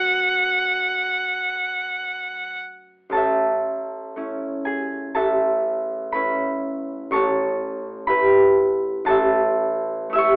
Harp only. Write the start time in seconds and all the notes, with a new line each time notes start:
Already playing: F#2 A3 C#4 F#4
3.10 A1 A2 A5
3.14 A4 E5
4.16 A3 C#4 E4
4.65 G#4 G#5
5.15 A1 A2 A4 E5 A5
6.12 A3 C#4 E4 B4 B5
7.11 A1 A2 A5 C#6
7.15 C#5
8.07 A3 E4 G4 B4 B5
9.05 A1 A2 A4 A5
9.10 E5
10.10 A3 E4 E6
10.15 G4 E5 C#6